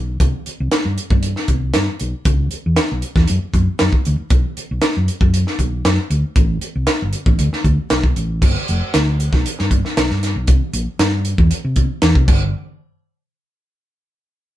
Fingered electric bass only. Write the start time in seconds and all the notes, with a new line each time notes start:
Already playing: B1
0.20 C2
0.47 muted fingered electric bass stroke
0.60 C2
0.85 G2
1.10 G2
1.48 C2
1.76 G2
2.01 B1
2.25 C#2
2.53 muted fingered electric bass stroke
2.66 E2
2.92 B1
3.16 E2
3.30 F#2
3.43 muted fingered electric bass stroke
3.54 F#2
3.81 F#2
4.07 D2
4.20 muted fingered electric bass stroke
4.31 B1
4.57 muted fingered electric bass stroke
4.71 B1
4.83 muted fingered electric bass stroke
4.97 F#2
5.21 F#2
5.59 B1
5.85 F#2
6.10 D2
6.36 A1
6.61 muted fingered electric bass stroke
6.75 C2
7.02 G1
7.26 A1
7.39 D2
7.53 muted fingered electric bass stroke
7.64 D2
7.91 B1
8.16 A1
8.42 G1
8.69 F1
8.95 D2
9.32 B1
9.60 G2
9.97 B1
10.11 G2
10.36 B1
10.48 C2
10.73 A#1
10.99 G2
11.38 E2
11.65 C3
12.02 E2
12.15 C3
12.28 G1